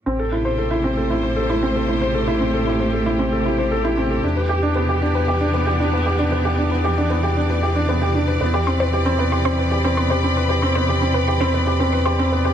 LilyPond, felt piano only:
\new Staff \with { instrumentName = "Felt piano" } { \time 4/4 \key a \minor \tempo 4 = 115 c'16 a'16 e'16 c''16 a'16 e'16 c'16 a'16 e'16 c''16 a'16 e'16 c'16 a'16 e'16 c''16 | a'16 e'16 c'16 a'16 e'16 c''16 a'16 e'16 c'16 a'16 e'16 c''16 a'16 e'16 c'16 a'16 | d'16 b'16 g'16 d'16 b16 g'16 d'16 b'16 g'16 d'16 b16 g'16 d'16 b'16 g'16 d'16 | b16 g'16 d'16 b'16 g'16 d'16 b16 g'16 d'16 b'16 g'16 d'16 b16 g'16 d'16 b'16 |
b16 g'16 c'16 b'16 g'16 c'16 b16 g'16 c'16 b'16 g'16 c'16 b16 g'16 c'16 b'16 | g'16 c'16 b16 g'16 c'16 b'16 g'16 c'16 b16 g'16 c'16 b'16 g'16 c'16 b16 g'16 | }